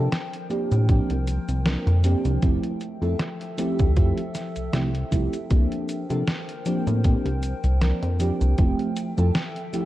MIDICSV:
0, 0, Header, 1, 5, 480
1, 0, Start_track
1, 0, Key_signature, -1, "major"
1, 0, Tempo, 769231
1, 1515, Time_signature, 4, 2, 24, 8
1, 6148, End_track
2, 0, Start_track
2, 0, Title_t, "Ambient pad"
2, 0, Program_c, 0, 92
2, 0, Note_on_c, 0, 53, 80
2, 0, Note_on_c, 0, 70, 76
2, 0, Note_on_c, 0, 72, 75
2, 0, Note_on_c, 0, 79, 91
2, 1495, Note_off_c, 0, 72, 0
2, 1496, Note_off_c, 0, 70, 0
2, 1518, Note_on_c, 0, 76, 73
2, 1519, Note_on_c, 0, 69, 75
2, 3411, Note_off_c, 0, 79, 0
2, 3417, Note_off_c, 0, 76, 0
2, 3418, Note_off_c, 0, 69, 0
2, 3427, Note_on_c, 0, 72, 76
2, 3428, Note_on_c, 0, 79, 93
2, 3430, Note_on_c, 0, 70, 75
2, 5332, Note_off_c, 0, 72, 0
2, 5333, Note_off_c, 0, 70, 0
2, 5354, Note_on_c, 0, 69, 75
2, 5354, Note_on_c, 0, 76, 72
2, 6148, Note_off_c, 0, 53, 0
2, 6148, Note_off_c, 0, 69, 0
2, 6148, Note_off_c, 0, 76, 0
2, 6148, Note_off_c, 0, 79, 0
2, 6148, End_track
3, 0, Start_track
3, 0, Title_t, "FM electric piano"
3, 0, Program_c, 1, 5
3, 308, Note_on_c, 1, 53, 96
3, 309, Note_on_c, 1, 58, 86
3, 312, Note_on_c, 1, 60, 91
3, 314, Note_on_c, 1, 62, 89
3, 315, Note_on_c, 1, 67, 110
3, 526, Note_off_c, 1, 53, 0
3, 526, Note_off_c, 1, 58, 0
3, 528, Note_off_c, 1, 60, 0
3, 529, Note_off_c, 1, 62, 0
3, 529, Note_off_c, 1, 67, 0
3, 549, Note_on_c, 1, 53, 87
3, 552, Note_on_c, 1, 58, 82
3, 554, Note_on_c, 1, 60, 80
3, 556, Note_on_c, 1, 62, 84
3, 559, Note_on_c, 1, 67, 105
3, 704, Note_off_c, 1, 53, 0
3, 706, Note_off_c, 1, 58, 0
3, 706, Note_off_c, 1, 60, 0
3, 707, Note_off_c, 1, 62, 0
3, 709, Note_off_c, 1, 67, 0
3, 1029, Note_on_c, 1, 53, 84
3, 1032, Note_on_c, 1, 58, 76
3, 1034, Note_on_c, 1, 60, 74
3, 1037, Note_on_c, 1, 62, 71
3, 1038, Note_on_c, 1, 70, 85
3, 1246, Note_off_c, 1, 53, 0
3, 1247, Note_off_c, 1, 58, 0
3, 1249, Note_off_c, 1, 60, 0
3, 1250, Note_off_c, 1, 62, 0
3, 1251, Note_off_c, 1, 70, 0
3, 1268, Note_on_c, 1, 53, 103
3, 1272, Note_on_c, 1, 58, 85
3, 1274, Note_on_c, 1, 60, 92
3, 1275, Note_on_c, 1, 62, 91
3, 1278, Note_on_c, 1, 67, 108
3, 1486, Note_off_c, 1, 53, 0
3, 1487, Note_off_c, 1, 58, 0
3, 1489, Note_off_c, 1, 60, 0
3, 1489, Note_off_c, 1, 62, 0
3, 1491, Note_off_c, 1, 67, 0
3, 1511, Note_on_c, 1, 53, 86
3, 1512, Note_on_c, 1, 57, 85
3, 1516, Note_on_c, 1, 60, 81
3, 1519, Note_on_c, 1, 64, 85
3, 1519, Note_on_c, 1, 67, 99
3, 1853, Note_off_c, 1, 53, 0
3, 1854, Note_off_c, 1, 57, 0
3, 1856, Note_off_c, 1, 60, 0
3, 1857, Note_off_c, 1, 64, 0
3, 1857, Note_off_c, 1, 67, 0
3, 1882, Note_on_c, 1, 53, 95
3, 1884, Note_on_c, 1, 57, 84
3, 1886, Note_on_c, 1, 60, 90
3, 1888, Note_on_c, 1, 64, 85
3, 1890, Note_on_c, 1, 69, 105
3, 1965, Note_off_c, 1, 53, 0
3, 1966, Note_off_c, 1, 57, 0
3, 1967, Note_off_c, 1, 60, 0
3, 1967, Note_off_c, 1, 64, 0
3, 1969, Note_off_c, 1, 69, 0
3, 2229, Note_on_c, 1, 53, 95
3, 2232, Note_on_c, 1, 57, 93
3, 2234, Note_on_c, 1, 60, 89
3, 2237, Note_on_c, 1, 64, 88
3, 2238, Note_on_c, 1, 67, 111
3, 2446, Note_off_c, 1, 53, 0
3, 2448, Note_off_c, 1, 57, 0
3, 2449, Note_off_c, 1, 60, 0
3, 2450, Note_off_c, 1, 64, 0
3, 2451, Note_off_c, 1, 67, 0
3, 2470, Note_on_c, 1, 53, 85
3, 2471, Note_on_c, 1, 57, 81
3, 2475, Note_on_c, 1, 60, 83
3, 2476, Note_on_c, 1, 64, 85
3, 2479, Note_on_c, 1, 67, 98
3, 2624, Note_off_c, 1, 53, 0
3, 2625, Note_off_c, 1, 57, 0
3, 2627, Note_off_c, 1, 60, 0
3, 2628, Note_off_c, 1, 64, 0
3, 2629, Note_off_c, 1, 67, 0
3, 2948, Note_on_c, 1, 53, 78
3, 2949, Note_on_c, 1, 57, 67
3, 2952, Note_on_c, 1, 60, 71
3, 2954, Note_on_c, 1, 64, 70
3, 2956, Note_on_c, 1, 67, 87
3, 3049, Note_off_c, 1, 53, 0
3, 3050, Note_off_c, 1, 57, 0
3, 3051, Note_off_c, 1, 60, 0
3, 3052, Note_off_c, 1, 64, 0
3, 3053, Note_off_c, 1, 67, 0
3, 3188, Note_on_c, 1, 53, 78
3, 3190, Note_on_c, 1, 57, 70
3, 3193, Note_on_c, 1, 60, 71
3, 3195, Note_on_c, 1, 64, 73
3, 3197, Note_on_c, 1, 67, 85
3, 3343, Note_off_c, 1, 53, 0
3, 3345, Note_off_c, 1, 57, 0
3, 3346, Note_off_c, 1, 60, 0
3, 3347, Note_off_c, 1, 64, 0
3, 3348, Note_off_c, 1, 67, 0
3, 3430, Note_on_c, 1, 53, 91
3, 3432, Note_on_c, 1, 58, 81
3, 3434, Note_on_c, 1, 60, 85
3, 3436, Note_on_c, 1, 62, 84
3, 3439, Note_on_c, 1, 67, 98
3, 3773, Note_off_c, 1, 53, 0
3, 3774, Note_off_c, 1, 58, 0
3, 3775, Note_off_c, 1, 60, 0
3, 3776, Note_off_c, 1, 62, 0
3, 3778, Note_off_c, 1, 67, 0
3, 3802, Note_on_c, 1, 53, 90
3, 3804, Note_on_c, 1, 58, 85
3, 3806, Note_on_c, 1, 60, 85
3, 3809, Note_on_c, 1, 62, 86
3, 3811, Note_on_c, 1, 69, 105
3, 3885, Note_off_c, 1, 53, 0
3, 3885, Note_off_c, 1, 58, 0
3, 3887, Note_off_c, 1, 60, 0
3, 3888, Note_off_c, 1, 62, 0
3, 3889, Note_off_c, 1, 69, 0
3, 4150, Note_on_c, 1, 53, 101
3, 4154, Note_on_c, 1, 58, 84
3, 4156, Note_on_c, 1, 60, 89
3, 4158, Note_on_c, 1, 62, 92
3, 4160, Note_on_c, 1, 67, 105
3, 4367, Note_off_c, 1, 53, 0
3, 4369, Note_off_c, 1, 58, 0
3, 4370, Note_off_c, 1, 60, 0
3, 4370, Note_off_c, 1, 62, 0
3, 4372, Note_off_c, 1, 67, 0
3, 4390, Note_on_c, 1, 53, 90
3, 4391, Note_on_c, 1, 58, 84
3, 4394, Note_on_c, 1, 60, 83
3, 4397, Note_on_c, 1, 62, 79
3, 4399, Note_on_c, 1, 67, 99
3, 4544, Note_off_c, 1, 53, 0
3, 4545, Note_off_c, 1, 58, 0
3, 4546, Note_off_c, 1, 60, 0
3, 4548, Note_off_c, 1, 62, 0
3, 4549, Note_off_c, 1, 67, 0
3, 4872, Note_on_c, 1, 53, 80
3, 4876, Note_on_c, 1, 58, 75
3, 4877, Note_on_c, 1, 60, 71
3, 4879, Note_on_c, 1, 62, 78
3, 4882, Note_on_c, 1, 70, 84
3, 5088, Note_off_c, 1, 53, 0
3, 5090, Note_off_c, 1, 58, 0
3, 5090, Note_off_c, 1, 60, 0
3, 5091, Note_off_c, 1, 62, 0
3, 5093, Note_off_c, 1, 70, 0
3, 5113, Note_on_c, 1, 53, 97
3, 5113, Note_on_c, 1, 58, 89
3, 5117, Note_on_c, 1, 60, 93
3, 5119, Note_on_c, 1, 62, 89
3, 5120, Note_on_c, 1, 67, 106
3, 5328, Note_off_c, 1, 53, 0
3, 5328, Note_off_c, 1, 58, 0
3, 5330, Note_off_c, 1, 60, 0
3, 5331, Note_off_c, 1, 62, 0
3, 5332, Note_off_c, 1, 67, 0
3, 5352, Note_on_c, 1, 53, 92
3, 5355, Note_on_c, 1, 57, 87
3, 5357, Note_on_c, 1, 60, 83
3, 5360, Note_on_c, 1, 64, 86
3, 5361, Note_on_c, 1, 67, 96
3, 5694, Note_off_c, 1, 53, 0
3, 5695, Note_off_c, 1, 57, 0
3, 5696, Note_off_c, 1, 60, 0
3, 5698, Note_off_c, 1, 64, 0
3, 5698, Note_off_c, 1, 67, 0
3, 5722, Note_on_c, 1, 53, 92
3, 5723, Note_on_c, 1, 57, 84
3, 5725, Note_on_c, 1, 60, 86
3, 5728, Note_on_c, 1, 64, 85
3, 5731, Note_on_c, 1, 69, 103
3, 5805, Note_off_c, 1, 53, 0
3, 5805, Note_off_c, 1, 57, 0
3, 5806, Note_off_c, 1, 60, 0
3, 5808, Note_off_c, 1, 64, 0
3, 5809, Note_off_c, 1, 69, 0
3, 6071, Note_on_c, 1, 53, 96
3, 6072, Note_on_c, 1, 57, 87
3, 6074, Note_on_c, 1, 60, 84
3, 6077, Note_on_c, 1, 64, 89
3, 6081, Note_on_c, 1, 67, 106
3, 6148, Note_off_c, 1, 53, 0
3, 6148, Note_off_c, 1, 57, 0
3, 6148, Note_off_c, 1, 60, 0
3, 6148, Note_off_c, 1, 64, 0
3, 6148, Note_off_c, 1, 67, 0
3, 6148, End_track
4, 0, Start_track
4, 0, Title_t, "Analog synth bass"
4, 0, Program_c, 2, 38
4, 448, Note_on_c, 2, 45, 102
4, 627, Note_off_c, 2, 45, 0
4, 689, Note_on_c, 2, 36, 90
4, 868, Note_off_c, 2, 36, 0
4, 926, Note_on_c, 2, 36, 93
4, 1106, Note_off_c, 2, 36, 0
4, 1166, Note_on_c, 2, 41, 107
4, 1346, Note_off_c, 2, 41, 0
4, 1405, Note_on_c, 2, 36, 101
4, 1489, Note_off_c, 2, 36, 0
4, 1517, Note_on_c, 2, 29, 97
4, 1617, Note_off_c, 2, 29, 0
4, 1883, Note_on_c, 2, 41, 86
4, 1968, Note_off_c, 2, 41, 0
4, 2367, Note_on_c, 2, 38, 99
4, 2474, Note_off_c, 2, 38, 0
4, 2477, Note_on_c, 2, 41, 81
4, 2578, Note_off_c, 2, 41, 0
4, 2848, Note_on_c, 2, 36, 43
4, 2934, Note_off_c, 2, 36, 0
4, 2956, Note_on_c, 2, 36, 82
4, 3146, Note_off_c, 2, 36, 0
4, 3196, Note_on_c, 2, 36, 80
4, 3297, Note_off_c, 2, 36, 0
4, 3435, Note_on_c, 2, 36, 98
4, 3537, Note_off_c, 2, 36, 0
4, 3807, Note_on_c, 2, 48, 86
4, 3890, Note_off_c, 2, 48, 0
4, 4287, Note_on_c, 2, 45, 99
4, 4466, Note_off_c, 2, 45, 0
4, 4526, Note_on_c, 2, 36, 90
4, 4706, Note_off_c, 2, 36, 0
4, 4767, Note_on_c, 2, 36, 92
4, 4946, Note_off_c, 2, 36, 0
4, 5007, Note_on_c, 2, 41, 104
4, 5187, Note_off_c, 2, 41, 0
4, 5247, Note_on_c, 2, 36, 100
4, 5331, Note_off_c, 2, 36, 0
4, 5355, Note_on_c, 2, 29, 100
4, 5457, Note_off_c, 2, 29, 0
4, 5728, Note_on_c, 2, 41, 91
4, 5811, Note_off_c, 2, 41, 0
4, 6148, End_track
5, 0, Start_track
5, 0, Title_t, "Drums"
5, 75, Note_on_c, 9, 38, 124
5, 75, Note_on_c, 9, 42, 68
5, 75, Note_on_c, 9, 69, 26
5, 138, Note_off_c, 9, 38, 0
5, 138, Note_off_c, 9, 42, 0
5, 138, Note_off_c, 9, 69, 0
5, 208, Note_on_c, 9, 42, 40
5, 270, Note_off_c, 9, 42, 0
5, 314, Note_on_c, 9, 42, 85
5, 314, Note_on_c, 9, 69, 62
5, 377, Note_off_c, 9, 42, 0
5, 377, Note_off_c, 9, 69, 0
5, 447, Note_on_c, 9, 42, 39
5, 447, Note_on_c, 9, 69, 35
5, 510, Note_off_c, 9, 42, 0
5, 510, Note_off_c, 9, 69, 0
5, 556, Note_on_c, 9, 36, 123
5, 556, Note_on_c, 9, 42, 64
5, 556, Note_on_c, 9, 69, 27
5, 618, Note_off_c, 9, 36, 0
5, 619, Note_off_c, 9, 42, 0
5, 619, Note_off_c, 9, 69, 0
5, 687, Note_on_c, 9, 42, 40
5, 749, Note_off_c, 9, 42, 0
5, 795, Note_on_c, 9, 42, 91
5, 795, Note_on_c, 9, 69, 57
5, 858, Note_off_c, 9, 42, 0
5, 858, Note_off_c, 9, 69, 0
5, 928, Note_on_c, 9, 42, 41
5, 928, Note_on_c, 9, 69, 36
5, 990, Note_off_c, 9, 42, 0
5, 990, Note_off_c, 9, 69, 0
5, 1034, Note_on_c, 9, 38, 127
5, 1034, Note_on_c, 9, 42, 66
5, 1034, Note_on_c, 9, 69, 26
5, 1096, Note_off_c, 9, 38, 0
5, 1096, Note_off_c, 9, 42, 0
5, 1096, Note_off_c, 9, 69, 0
5, 1168, Note_on_c, 9, 42, 40
5, 1230, Note_off_c, 9, 42, 0
5, 1273, Note_on_c, 9, 42, 93
5, 1273, Note_on_c, 9, 69, 64
5, 1336, Note_off_c, 9, 42, 0
5, 1336, Note_off_c, 9, 69, 0
5, 1405, Note_on_c, 9, 42, 44
5, 1405, Note_on_c, 9, 69, 36
5, 1467, Note_off_c, 9, 42, 0
5, 1467, Note_off_c, 9, 69, 0
5, 1514, Note_on_c, 9, 42, 66
5, 1514, Note_on_c, 9, 69, 26
5, 1516, Note_on_c, 9, 36, 121
5, 1577, Note_off_c, 9, 42, 0
5, 1577, Note_off_c, 9, 69, 0
5, 1579, Note_off_c, 9, 36, 0
5, 1646, Note_on_c, 9, 42, 38
5, 1708, Note_off_c, 9, 42, 0
5, 1754, Note_on_c, 9, 42, 85
5, 1754, Note_on_c, 9, 69, 61
5, 1817, Note_off_c, 9, 42, 0
5, 1817, Note_off_c, 9, 69, 0
5, 1886, Note_on_c, 9, 42, 39
5, 1886, Note_on_c, 9, 69, 33
5, 1949, Note_off_c, 9, 42, 0
5, 1949, Note_off_c, 9, 69, 0
5, 1993, Note_on_c, 9, 38, 118
5, 1993, Note_on_c, 9, 42, 62
5, 1993, Note_on_c, 9, 69, 25
5, 2056, Note_off_c, 9, 38, 0
5, 2056, Note_off_c, 9, 42, 0
5, 2056, Note_off_c, 9, 69, 0
5, 2127, Note_on_c, 9, 42, 41
5, 2189, Note_off_c, 9, 42, 0
5, 2235, Note_on_c, 9, 42, 91
5, 2235, Note_on_c, 9, 69, 59
5, 2298, Note_off_c, 9, 42, 0
5, 2298, Note_off_c, 9, 69, 0
5, 2365, Note_on_c, 9, 42, 36
5, 2365, Note_on_c, 9, 69, 36
5, 2368, Note_on_c, 9, 36, 113
5, 2428, Note_off_c, 9, 42, 0
5, 2428, Note_off_c, 9, 69, 0
5, 2430, Note_off_c, 9, 36, 0
5, 2474, Note_on_c, 9, 42, 64
5, 2474, Note_on_c, 9, 69, 26
5, 2476, Note_on_c, 9, 36, 124
5, 2536, Note_off_c, 9, 42, 0
5, 2536, Note_off_c, 9, 69, 0
5, 2538, Note_off_c, 9, 36, 0
5, 2606, Note_on_c, 9, 42, 39
5, 2668, Note_off_c, 9, 42, 0
5, 2714, Note_on_c, 9, 38, 36
5, 2714, Note_on_c, 9, 42, 89
5, 2714, Note_on_c, 9, 69, 58
5, 2776, Note_off_c, 9, 38, 0
5, 2776, Note_off_c, 9, 42, 0
5, 2776, Note_off_c, 9, 69, 0
5, 2846, Note_on_c, 9, 42, 38
5, 2846, Note_on_c, 9, 69, 35
5, 2908, Note_off_c, 9, 42, 0
5, 2908, Note_off_c, 9, 69, 0
5, 2954, Note_on_c, 9, 38, 120
5, 2954, Note_on_c, 9, 42, 65
5, 2954, Note_on_c, 9, 69, 26
5, 3016, Note_off_c, 9, 38, 0
5, 3016, Note_off_c, 9, 42, 0
5, 3016, Note_off_c, 9, 69, 0
5, 3087, Note_on_c, 9, 42, 40
5, 3150, Note_off_c, 9, 42, 0
5, 3196, Note_on_c, 9, 36, 62
5, 3197, Note_on_c, 9, 42, 89
5, 3197, Note_on_c, 9, 69, 61
5, 3258, Note_off_c, 9, 36, 0
5, 3259, Note_off_c, 9, 42, 0
5, 3259, Note_off_c, 9, 69, 0
5, 3328, Note_on_c, 9, 42, 42
5, 3328, Note_on_c, 9, 69, 37
5, 3390, Note_off_c, 9, 42, 0
5, 3390, Note_off_c, 9, 69, 0
5, 3435, Note_on_c, 9, 42, 65
5, 3435, Note_on_c, 9, 69, 27
5, 3436, Note_on_c, 9, 36, 122
5, 3497, Note_off_c, 9, 42, 0
5, 3497, Note_off_c, 9, 69, 0
5, 3498, Note_off_c, 9, 36, 0
5, 3568, Note_on_c, 9, 42, 36
5, 3630, Note_off_c, 9, 42, 0
5, 3675, Note_on_c, 9, 42, 87
5, 3675, Note_on_c, 9, 69, 61
5, 3737, Note_off_c, 9, 42, 0
5, 3737, Note_off_c, 9, 69, 0
5, 3808, Note_on_c, 9, 42, 37
5, 3808, Note_on_c, 9, 69, 37
5, 3870, Note_off_c, 9, 42, 0
5, 3870, Note_off_c, 9, 69, 0
5, 3915, Note_on_c, 9, 38, 120
5, 3915, Note_on_c, 9, 42, 60
5, 3915, Note_on_c, 9, 69, 26
5, 3977, Note_off_c, 9, 38, 0
5, 3977, Note_off_c, 9, 42, 0
5, 3977, Note_off_c, 9, 69, 0
5, 4047, Note_on_c, 9, 42, 40
5, 4110, Note_off_c, 9, 42, 0
5, 4154, Note_on_c, 9, 42, 84
5, 4154, Note_on_c, 9, 69, 58
5, 4216, Note_off_c, 9, 42, 0
5, 4216, Note_off_c, 9, 69, 0
5, 4287, Note_on_c, 9, 42, 35
5, 4287, Note_on_c, 9, 69, 35
5, 4350, Note_off_c, 9, 42, 0
5, 4350, Note_off_c, 9, 69, 0
5, 4394, Note_on_c, 9, 42, 62
5, 4394, Note_on_c, 9, 69, 27
5, 4396, Note_on_c, 9, 36, 120
5, 4457, Note_off_c, 9, 42, 0
5, 4457, Note_off_c, 9, 69, 0
5, 4459, Note_off_c, 9, 36, 0
5, 4527, Note_on_c, 9, 42, 37
5, 4590, Note_off_c, 9, 42, 0
5, 4635, Note_on_c, 9, 42, 86
5, 4635, Note_on_c, 9, 69, 58
5, 4697, Note_off_c, 9, 42, 0
5, 4697, Note_off_c, 9, 69, 0
5, 4767, Note_on_c, 9, 42, 36
5, 4767, Note_on_c, 9, 69, 36
5, 4829, Note_off_c, 9, 42, 0
5, 4829, Note_off_c, 9, 69, 0
5, 4877, Note_on_c, 9, 38, 110
5, 4877, Note_on_c, 9, 42, 64
5, 4877, Note_on_c, 9, 69, 27
5, 4939, Note_off_c, 9, 38, 0
5, 4939, Note_off_c, 9, 42, 0
5, 4939, Note_off_c, 9, 69, 0
5, 5008, Note_on_c, 9, 42, 37
5, 5070, Note_off_c, 9, 42, 0
5, 5115, Note_on_c, 9, 42, 90
5, 5115, Note_on_c, 9, 69, 61
5, 5178, Note_off_c, 9, 42, 0
5, 5178, Note_off_c, 9, 69, 0
5, 5248, Note_on_c, 9, 42, 39
5, 5248, Note_on_c, 9, 69, 37
5, 5310, Note_off_c, 9, 42, 0
5, 5310, Note_off_c, 9, 69, 0
5, 5353, Note_on_c, 9, 42, 63
5, 5353, Note_on_c, 9, 69, 27
5, 5357, Note_on_c, 9, 36, 113
5, 5415, Note_off_c, 9, 42, 0
5, 5415, Note_off_c, 9, 69, 0
5, 5419, Note_off_c, 9, 36, 0
5, 5486, Note_on_c, 9, 42, 38
5, 5548, Note_off_c, 9, 42, 0
5, 5594, Note_on_c, 9, 42, 89
5, 5594, Note_on_c, 9, 69, 64
5, 5656, Note_off_c, 9, 42, 0
5, 5656, Note_off_c, 9, 69, 0
5, 5728, Note_on_c, 9, 42, 37
5, 5728, Note_on_c, 9, 69, 38
5, 5790, Note_off_c, 9, 42, 0
5, 5790, Note_off_c, 9, 69, 0
5, 5835, Note_on_c, 9, 38, 117
5, 5835, Note_on_c, 9, 42, 62
5, 5835, Note_on_c, 9, 69, 28
5, 5898, Note_off_c, 9, 38, 0
5, 5898, Note_off_c, 9, 42, 0
5, 5898, Note_off_c, 9, 69, 0
5, 5967, Note_on_c, 9, 42, 36
5, 6030, Note_off_c, 9, 42, 0
5, 6076, Note_on_c, 9, 42, 83
5, 6076, Note_on_c, 9, 69, 60
5, 6138, Note_off_c, 9, 42, 0
5, 6138, Note_off_c, 9, 69, 0
5, 6148, End_track
0, 0, End_of_file